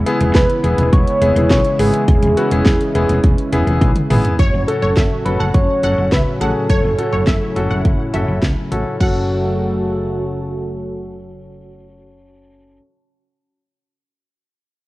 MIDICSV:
0, 0, Header, 1, 7, 480
1, 0, Start_track
1, 0, Key_signature, 3, "minor"
1, 0, Tempo, 576923
1, 1732, Time_signature, 4, 2, 24, 8
1, 12375, End_track
2, 0, Start_track
2, 0, Title_t, "Synth pluck"
2, 0, Program_c, 0, 84
2, 3654, Note_on_c, 0, 73, 103
2, 3846, Note_off_c, 0, 73, 0
2, 4013, Note_on_c, 0, 73, 76
2, 4109, Note_off_c, 0, 73, 0
2, 4134, Note_on_c, 0, 76, 72
2, 4230, Note_off_c, 0, 76, 0
2, 4495, Note_on_c, 0, 78, 73
2, 4590, Note_off_c, 0, 78, 0
2, 4857, Note_on_c, 0, 78, 81
2, 5048, Note_off_c, 0, 78, 0
2, 5095, Note_on_c, 0, 76, 79
2, 5190, Note_off_c, 0, 76, 0
2, 5334, Note_on_c, 0, 78, 79
2, 5430, Note_off_c, 0, 78, 0
2, 5574, Note_on_c, 0, 73, 105
2, 5766, Note_off_c, 0, 73, 0
2, 5931, Note_on_c, 0, 73, 71
2, 6028, Note_off_c, 0, 73, 0
2, 6051, Note_on_c, 0, 76, 84
2, 6148, Note_off_c, 0, 76, 0
2, 6412, Note_on_c, 0, 78, 73
2, 6509, Note_off_c, 0, 78, 0
2, 6772, Note_on_c, 0, 76, 70
2, 7110, Note_off_c, 0, 76, 0
2, 7491, Note_on_c, 0, 78, 80
2, 8898, Note_off_c, 0, 78, 0
2, 12375, End_track
3, 0, Start_track
3, 0, Title_t, "Soft synth lead"
3, 0, Program_c, 1, 80
3, 296, Note_on_c, 1, 71, 113
3, 774, Note_on_c, 1, 73, 114
3, 787, Note_off_c, 1, 71, 0
3, 1249, Note_off_c, 1, 73, 0
3, 1254, Note_on_c, 1, 73, 111
3, 1493, Note_on_c, 1, 68, 104
3, 1506, Note_off_c, 1, 73, 0
3, 3173, Note_off_c, 1, 68, 0
3, 3892, Note_on_c, 1, 69, 95
3, 4372, Note_on_c, 1, 71, 100
3, 4384, Note_off_c, 1, 69, 0
3, 4491, Note_on_c, 1, 69, 95
3, 4503, Note_off_c, 1, 71, 0
3, 4611, Note_on_c, 1, 73, 114
3, 4624, Note_off_c, 1, 69, 0
3, 5090, Note_off_c, 1, 73, 0
3, 5095, Note_on_c, 1, 71, 95
3, 5317, Note_off_c, 1, 71, 0
3, 5336, Note_on_c, 1, 69, 100
3, 6981, Note_off_c, 1, 69, 0
3, 7492, Note_on_c, 1, 66, 97
3, 10044, Note_off_c, 1, 66, 0
3, 12375, End_track
4, 0, Start_track
4, 0, Title_t, "Grand piano"
4, 0, Program_c, 2, 0
4, 52, Note_on_c, 2, 68, 101
4, 53, Note_on_c, 2, 59, 96
4, 53, Note_on_c, 2, 64, 87
4, 145, Note_off_c, 2, 68, 0
4, 146, Note_off_c, 2, 59, 0
4, 146, Note_off_c, 2, 64, 0
4, 172, Note_on_c, 2, 59, 74
4, 172, Note_on_c, 2, 68, 81
4, 173, Note_on_c, 2, 64, 68
4, 358, Note_off_c, 2, 59, 0
4, 358, Note_off_c, 2, 68, 0
4, 359, Note_off_c, 2, 64, 0
4, 530, Note_on_c, 2, 59, 76
4, 531, Note_on_c, 2, 64, 71
4, 531, Note_on_c, 2, 68, 84
4, 718, Note_off_c, 2, 59, 0
4, 718, Note_off_c, 2, 64, 0
4, 718, Note_off_c, 2, 68, 0
4, 1012, Note_on_c, 2, 59, 78
4, 1012, Note_on_c, 2, 64, 74
4, 1012, Note_on_c, 2, 68, 83
4, 1105, Note_off_c, 2, 59, 0
4, 1105, Note_off_c, 2, 64, 0
4, 1105, Note_off_c, 2, 68, 0
4, 1132, Note_on_c, 2, 59, 68
4, 1132, Note_on_c, 2, 64, 65
4, 1132, Note_on_c, 2, 68, 77
4, 1318, Note_off_c, 2, 59, 0
4, 1318, Note_off_c, 2, 64, 0
4, 1318, Note_off_c, 2, 68, 0
4, 1493, Note_on_c, 2, 59, 77
4, 1493, Note_on_c, 2, 64, 70
4, 1493, Note_on_c, 2, 68, 89
4, 1679, Note_off_c, 2, 59, 0
4, 1679, Note_off_c, 2, 64, 0
4, 1679, Note_off_c, 2, 68, 0
4, 1973, Note_on_c, 2, 59, 79
4, 1973, Note_on_c, 2, 64, 74
4, 1973, Note_on_c, 2, 66, 88
4, 2066, Note_off_c, 2, 59, 0
4, 2066, Note_off_c, 2, 64, 0
4, 2066, Note_off_c, 2, 66, 0
4, 2094, Note_on_c, 2, 64, 79
4, 2094, Note_on_c, 2, 68, 96
4, 2095, Note_on_c, 2, 59, 89
4, 2279, Note_off_c, 2, 64, 0
4, 2280, Note_off_c, 2, 59, 0
4, 2280, Note_off_c, 2, 68, 0
4, 2453, Note_on_c, 2, 59, 93
4, 2453, Note_on_c, 2, 64, 83
4, 2453, Note_on_c, 2, 68, 98
4, 2639, Note_off_c, 2, 59, 0
4, 2639, Note_off_c, 2, 64, 0
4, 2639, Note_off_c, 2, 68, 0
4, 2933, Note_on_c, 2, 68, 100
4, 2934, Note_on_c, 2, 59, 93
4, 2934, Note_on_c, 2, 64, 84
4, 3026, Note_off_c, 2, 59, 0
4, 3026, Note_off_c, 2, 64, 0
4, 3026, Note_off_c, 2, 68, 0
4, 3052, Note_on_c, 2, 59, 82
4, 3052, Note_on_c, 2, 64, 75
4, 3052, Note_on_c, 2, 68, 93
4, 3238, Note_off_c, 2, 59, 0
4, 3238, Note_off_c, 2, 64, 0
4, 3238, Note_off_c, 2, 68, 0
4, 3413, Note_on_c, 2, 59, 93
4, 3414, Note_on_c, 2, 64, 83
4, 3414, Note_on_c, 2, 68, 101
4, 3599, Note_off_c, 2, 59, 0
4, 3599, Note_off_c, 2, 64, 0
4, 3599, Note_off_c, 2, 68, 0
4, 3893, Note_on_c, 2, 61, 72
4, 3893, Note_on_c, 2, 66, 67
4, 3894, Note_on_c, 2, 69, 83
4, 4079, Note_off_c, 2, 61, 0
4, 4079, Note_off_c, 2, 66, 0
4, 4079, Note_off_c, 2, 69, 0
4, 4372, Note_on_c, 2, 66, 67
4, 4373, Note_on_c, 2, 61, 71
4, 4373, Note_on_c, 2, 69, 81
4, 4559, Note_off_c, 2, 61, 0
4, 4559, Note_off_c, 2, 66, 0
4, 4559, Note_off_c, 2, 69, 0
4, 4852, Note_on_c, 2, 61, 71
4, 4852, Note_on_c, 2, 66, 68
4, 4852, Note_on_c, 2, 69, 81
4, 5038, Note_off_c, 2, 61, 0
4, 5038, Note_off_c, 2, 66, 0
4, 5039, Note_off_c, 2, 69, 0
4, 5331, Note_on_c, 2, 61, 74
4, 5331, Note_on_c, 2, 66, 66
4, 5331, Note_on_c, 2, 68, 80
4, 5518, Note_off_c, 2, 61, 0
4, 5518, Note_off_c, 2, 66, 0
4, 5518, Note_off_c, 2, 68, 0
4, 5811, Note_on_c, 2, 61, 72
4, 5812, Note_on_c, 2, 66, 68
4, 5812, Note_on_c, 2, 69, 80
4, 5998, Note_off_c, 2, 61, 0
4, 5998, Note_off_c, 2, 66, 0
4, 5998, Note_off_c, 2, 69, 0
4, 6291, Note_on_c, 2, 66, 76
4, 6291, Note_on_c, 2, 69, 92
4, 6292, Note_on_c, 2, 61, 81
4, 6478, Note_off_c, 2, 61, 0
4, 6478, Note_off_c, 2, 66, 0
4, 6478, Note_off_c, 2, 69, 0
4, 6771, Note_on_c, 2, 66, 74
4, 6771, Note_on_c, 2, 69, 91
4, 6772, Note_on_c, 2, 61, 81
4, 6958, Note_off_c, 2, 61, 0
4, 6958, Note_off_c, 2, 66, 0
4, 6958, Note_off_c, 2, 69, 0
4, 7252, Note_on_c, 2, 61, 82
4, 7252, Note_on_c, 2, 66, 75
4, 7253, Note_on_c, 2, 69, 88
4, 7438, Note_off_c, 2, 61, 0
4, 7439, Note_off_c, 2, 66, 0
4, 7439, Note_off_c, 2, 69, 0
4, 7475, Note_on_c, 2, 61, 70
4, 7491, Note_on_c, 2, 66, 68
4, 7508, Note_on_c, 2, 69, 79
4, 10618, Note_off_c, 2, 61, 0
4, 10627, Note_off_c, 2, 66, 0
4, 10635, Note_off_c, 2, 69, 0
4, 12375, End_track
5, 0, Start_track
5, 0, Title_t, "Analog synth pad"
5, 0, Program_c, 3, 89
5, 0, Note_on_c, 3, 49, 85
5, 0, Note_on_c, 3, 52, 79
5, 0, Note_on_c, 3, 56, 79
5, 0, Note_on_c, 3, 59, 77
5, 0, Note_on_c, 3, 64, 77
5, 1713, Note_off_c, 3, 59, 0
5, 1731, Note_on_c, 3, 61, 76
5, 3618, Note_off_c, 3, 52, 0
5, 3619, Note_off_c, 3, 49, 0
5, 3619, Note_off_c, 3, 56, 0
5, 3619, Note_off_c, 3, 64, 0
5, 3633, Note_off_c, 3, 61, 0
5, 3651, Note_on_c, 3, 49, 75
5, 3651, Note_on_c, 3, 61, 75
5, 3651, Note_on_c, 3, 66, 89
5, 3652, Note_on_c, 3, 54, 75
5, 3653, Note_on_c, 3, 45, 84
5, 5553, Note_off_c, 3, 66, 0
5, 5573, Note_on_c, 3, 64, 89
5, 7458, Note_off_c, 3, 61, 0
5, 7459, Note_off_c, 3, 49, 0
5, 7459, Note_off_c, 3, 54, 0
5, 7460, Note_off_c, 3, 45, 0
5, 7473, Note_off_c, 3, 64, 0
5, 7493, Note_on_c, 3, 49, 81
5, 7493, Note_on_c, 3, 54, 72
5, 7493, Note_on_c, 3, 66, 70
5, 7494, Note_on_c, 3, 57, 71
5, 7495, Note_on_c, 3, 69, 85
5, 10045, Note_off_c, 3, 49, 0
5, 10045, Note_off_c, 3, 54, 0
5, 10045, Note_off_c, 3, 57, 0
5, 10045, Note_off_c, 3, 66, 0
5, 10046, Note_off_c, 3, 69, 0
5, 12375, End_track
6, 0, Start_track
6, 0, Title_t, "Fretless electric bass"
6, 0, Program_c, 4, 35
6, 170, Note_on_c, 4, 28, 111
6, 259, Note_off_c, 4, 28, 0
6, 292, Note_on_c, 4, 28, 103
6, 380, Note_off_c, 4, 28, 0
6, 531, Note_on_c, 4, 28, 94
6, 620, Note_off_c, 4, 28, 0
6, 650, Note_on_c, 4, 28, 95
6, 739, Note_off_c, 4, 28, 0
6, 772, Note_on_c, 4, 28, 114
6, 860, Note_off_c, 4, 28, 0
6, 1010, Note_on_c, 4, 28, 100
6, 1099, Note_off_c, 4, 28, 0
6, 1130, Note_on_c, 4, 28, 102
6, 1219, Note_off_c, 4, 28, 0
6, 1251, Note_on_c, 4, 35, 97
6, 1340, Note_off_c, 4, 35, 0
6, 1491, Note_on_c, 4, 32, 92
6, 1580, Note_off_c, 4, 32, 0
6, 1732, Note_on_c, 4, 28, 121
6, 1820, Note_off_c, 4, 28, 0
6, 1851, Note_on_c, 4, 28, 102
6, 1940, Note_off_c, 4, 28, 0
6, 2091, Note_on_c, 4, 28, 94
6, 2180, Note_off_c, 4, 28, 0
6, 2212, Note_on_c, 4, 28, 110
6, 2300, Note_off_c, 4, 28, 0
6, 2451, Note_on_c, 4, 28, 102
6, 2540, Note_off_c, 4, 28, 0
6, 2572, Note_on_c, 4, 28, 99
6, 2660, Note_off_c, 4, 28, 0
6, 2693, Note_on_c, 4, 28, 99
6, 2781, Note_off_c, 4, 28, 0
6, 2932, Note_on_c, 4, 28, 99
6, 3020, Note_off_c, 4, 28, 0
6, 3052, Note_on_c, 4, 28, 99
6, 3140, Note_off_c, 4, 28, 0
6, 3173, Note_on_c, 4, 35, 102
6, 3261, Note_off_c, 4, 35, 0
6, 3413, Note_on_c, 4, 32, 96
6, 3501, Note_off_c, 4, 32, 0
6, 3653, Note_on_c, 4, 30, 102
6, 3741, Note_off_c, 4, 30, 0
6, 3775, Note_on_c, 4, 30, 91
6, 3862, Note_off_c, 4, 30, 0
6, 4014, Note_on_c, 4, 30, 89
6, 4101, Note_off_c, 4, 30, 0
6, 4133, Note_on_c, 4, 30, 109
6, 4221, Note_off_c, 4, 30, 0
6, 4374, Note_on_c, 4, 30, 92
6, 4461, Note_off_c, 4, 30, 0
6, 4494, Note_on_c, 4, 30, 95
6, 4582, Note_off_c, 4, 30, 0
6, 4614, Note_on_c, 4, 30, 101
6, 4701, Note_off_c, 4, 30, 0
6, 4854, Note_on_c, 4, 30, 96
6, 4941, Note_off_c, 4, 30, 0
6, 4974, Note_on_c, 4, 30, 92
6, 5062, Note_off_c, 4, 30, 0
6, 5092, Note_on_c, 4, 37, 82
6, 5180, Note_off_c, 4, 37, 0
6, 5333, Note_on_c, 4, 33, 85
6, 5421, Note_off_c, 4, 33, 0
6, 5572, Note_on_c, 4, 30, 99
6, 5660, Note_off_c, 4, 30, 0
6, 5694, Note_on_c, 4, 30, 96
6, 5782, Note_off_c, 4, 30, 0
6, 5934, Note_on_c, 4, 30, 90
6, 6021, Note_off_c, 4, 30, 0
6, 6052, Note_on_c, 4, 30, 102
6, 6140, Note_off_c, 4, 30, 0
6, 6293, Note_on_c, 4, 30, 90
6, 6381, Note_off_c, 4, 30, 0
6, 6413, Note_on_c, 4, 30, 91
6, 6501, Note_off_c, 4, 30, 0
6, 6533, Note_on_c, 4, 30, 100
6, 6621, Note_off_c, 4, 30, 0
6, 6773, Note_on_c, 4, 30, 98
6, 6861, Note_off_c, 4, 30, 0
6, 6892, Note_on_c, 4, 30, 91
6, 6980, Note_off_c, 4, 30, 0
6, 7012, Note_on_c, 4, 37, 86
6, 7100, Note_off_c, 4, 37, 0
6, 7253, Note_on_c, 4, 33, 82
6, 7341, Note_off_c, 4, 33, 0
6, 7492, Note_on_c, 4, 30, 91
6, 10627, Note_off_c, 4, 30, 0
6, 12375, End_track
7, 0, Start_track
7, 0, Title_t, "Drums"
7, 53, Note_on_c, 9, 42, 75
7, 136, Note_off_c, 9, 42, 0
7, 171, Note_on_c, 9, 42, 58
7, 254, Note_off_c, 9, 42, 0
7, 290, Note_on_c, 9, 38, 113
7, 292, Note_on_c, 9, 36, 117
7, 292, Note_on_c, 9, 42, 75
7, 373, Note_off_c, 9, 38, 0
7, 375, Note_off_c, 9, 36, 0
7, 375, Note_off_c, 9, 42, 0
7, 414, Note_on_c, 9, 42, 52
7, 497, Note_off_c, 9, 42, 0
7, 533, Note_on_c, 9, 42, 54
7, 616, Note_off_c, 9, 42, 0
7, 651, Note_on_c, 9, 42, 64
7, 735, Note_off_c, 9, 42, 0
7, 772, Note_on_c, 9, 42, 85
7, 773, Note_on_c, 9, 36, 120
7, 856, Note_off_c, 9, 36, 0
7, 856, Note_off_c, 9, 42, 0
7, 894, Note_on_c, 9, 42, 50
7, 977, Note_off_c, 9, 42, 0
7, 1012, Note_on_c, 9, 42, 78
7, 1096, Note_off_c, 9, 42, 0
7, 1135, Note_on_c, 9, 42, 55
7, 1218, Note_off_c, 9, 42, 0
7, 1252, Note_on_c, 9, 36, 111
7, 1252, Note_on_c, 9, 38, 117
7, 1253, Note_on_c, 9, 42, 74
7, 1335, Note_off_c, 9, 36, 0
7, 1335, Note_off_c, 9, 38, 0
7, 1336, Note_off_c, 9, 42, 0
7, 1370, Note_on_c, 9, 42, 57
7, 1453, Note_off_c, 9, 42, 0
7, 1493, Note_on_c, 9, 46, 95
7, 1576, Note_off_c, 9, 46, 0
7, 1612, Note_on_c, 9, 42, 57
7, 1695, Note_off_c, 9, 42, 0
7, 1732, Note_on_c, 9, 36, 127
7, 1732, Note_on_c, 9, 42, 85
7, 1815, Note_off_c, 9, 36, 0
7, 1815, Note_off_c, 9, 42, 0
7, 1852, Note_on_c, 9, 42, 59
7, 1935, Note_off_c, 9, 42, 0
7, 1974, Note_on_c, 9, 42, 73
7, 2057, Note_off_c, 9, 42, 0
7, 2091, Note_on_c, 9, 42, 58
7, 2174, Note_off_c, 9, 42, 0
7, 2209, Note_on_c, 9, 38, 110
7, 2212, Note_on_c, 9, 36, 114
7, 2212, Note_on_c, 9, 42, 74
7, 2293, Note_off_c, 9, 38, 0
7, 2295, Note_off_c, 9, 36, 0
7, 2295, Note_off_c, 9, 42, 0
7, 2334, Note_on_c, 9, 42, 52
7, 2417, Note_off_c, 9, 42, 0
7, 2454, Note_on_c, 9, 42, 55
7, 2537, Note_off_c, 9, 42, 0
7, 2572, Note_on_c, 9, 42, 63
7, 2656, Note_off_c, 9, 42, 0
7, 2692, Note_on_c, 9, 42, 84
7, 2693, Note_on_c, 9, 36, 115
7, 2775, Note_off_c, 9, 42, 0
7, 2776, Note_off_c, 9, 36, 0
7, 2814, Note_on_c, 9, 42, 50
7, 2897, Note_off_c, 9, 42, 0
7, 2933, Note_on_c, 9, 42, 74
7, 3016, Note_off_c, 9, 42, 0
7, 3056, Note_on_c, 9, 42, 54
7, 3139, Note_off_c, 9, 42, 0
7, 3173, Note_on_c, 9, 36, 109
7, 3173, Note_on_c, 9, 48, 60
7, 3174, Note_on_c, 9, 42, 73
7, 3256, Note_off_c, 9, 36, 0
7, 3256, Note_off_c, 9, 48, 0
7, 3257, Note_off_c, 9, 42, 0
7, 3291, Note_on_c, 9, 42, 56
7, 3294, Note_on_c, 9, 47, 67
7, 3374, Note_off_c, 9, 42, 0
7, 3377, Note_off_c, 9, 47, 0
7, 3413, Note_on_c, 9, 45, 97
7, 3415, Note_on_c, 9, 46, 96
7, 3496, Note_off_c, 9, 45, 0
7, 3498, Note_off_c, 9, 46, 0
7, 3533, Note_on_c, 9, 42, 58
7, 3533, Note_on_c, 9, 43, 96
7, 3616, Note_off_c, 9, 42, 0
7, 3617, Note_off_c, 9, 43, 0
7, 3652, Note_on_c, 9, 42, 78
7, 3653, Note_on_c, 9, 36, 115
7, 3736, Note_off_c, 9, 42, 0
7, 3737, Note_off_c, 9, 36, 0
7, 3895, Note_on_c, 9, 42, 72
7, 3978, Note_off_c, 9, 42, 0
7, 4132, Note_on_c, 9, 38, 106
7, 4133, Note_on_c, 9, 36, 109
7, 4135, Note_on_c, 9, 42, 67
7, 4215, Note_off_c, 9, 38, 0
7, 4217, Note_off_c, 9, 36, 0
7, 4218, Note_off_c, 9, 42, 0
7, 4374, Note_on_c, 9, 42, 53
7, 4458, Note_off_c, 9, 42, 0
7, 4612, Note_on_c, 9, 42, 80
7, 4614, Note_on_c, 9, 36, 114
7, 4696, Note_off_c, 9, 42, 0
7, 4697, Note_off_c, 9, 36, 0
7, 4852, Note_on_c, 9, 42, 68
7, 4935, Note_off_c, 9, 42, 0
7, 5092, Note_on_c, 9, 36, 104
7, 5092, Note_on_c, 9, 38, 106
7, 5094, Note_on_c, 9, 42, 64
7, 5175, Note_off_c, 9, 36, 0
7, 5176, Note_off_c, 9, 38, 0
7, 5177, Note_off_c, 9, 42, 0
7, 5334, Note_on_c, 9, 42, 89
7, 5417, Note_off_c, 9, 42, 0
7, 5572, Note_on_c, 9, 36, 111
7, 5572, Note_on_c, 9, 42, 78
7, 5655, Note_off_c, 9, 42, 0
7, 5656, Note_off_c, 9, 36, 0
7, 5814, Note_on_c, 9, 42, 72
7, 5897, Note_off_c, 9, 42, 0
7, 6049, Note_on_c, 9, 38, 107
7, 6051, Note_on_c, 9, 42, 70
7, 6052, Note_on_c, 9, 36, 103
7, 6132, Note_off_c, 9, 38, 0
7, 6135, Note_off_c, 9, 36, 0
7, 6135, Note_off_c, 9, 42, 0
7, 6293, Note_on_c, 9, 42, 48
7, 6376, Note_off_c, 9, 42, 0
7, 6533, Note_on_c, 9, 36, 108
7, 6533, Note_on_c, 9, 42, 76
7, 6616, Note_off_c, 9, 36, 0
7, 6616, Note_off_c, 9, 42, 0
7, 6772, Note_on_c, 9, 42, 67
7, 6856, Note_off_c, 9, 42, 0
7, 7012, Note_on_c, 9, 36, 102
7, 7013, Note_on_c, 9, 38, 106
7, 7014, Note_on_c, 9, 42, 67
7, 7095, Note_off_c, 9, 36, 0
7, 7096, Note_off_c, 9, 38, 0
7, 7097, Note_off_c, 9, 42, 0
7, 7254, Note_on_c, 9, 42, 87
7, 7337, Note_off_c, 9, 42, 0
7, 7492, Note_on_c, 9, 36, 95
7, 7493, Note_on_c, 9, 49, 80
7, 7576, Note_off_c, 9, 36, 0
7, 7576, Note_off_c, 9, 49, 0
7, 12375, End_track
0, 0, End_of_file